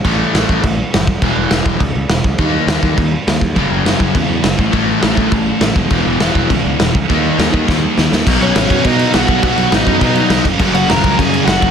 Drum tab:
CC |x-x-x-x-|x-x-x-x-|x-x-x-x-|x-x-x-x-|
SD |--o---o-|--o---o-|--o---o-|--o---o-|
BD |o--oo--o|o--oo--o|o--oo--o|o--oo--o|

CC |x-x-x-x-|x-x-x-x-|x-x-----|xxxxxxxx|
SD |--o---o-|--o---o-|--o-o-oo|--o---o-|
BD |o--oo--o|o--oo--o|o--oo---|o--oo--o|

CC |xxxxxxxx|xxxxxxxx|
SD |--o---o-|--o---o-|
BD |o--oo--o|o--oo--o|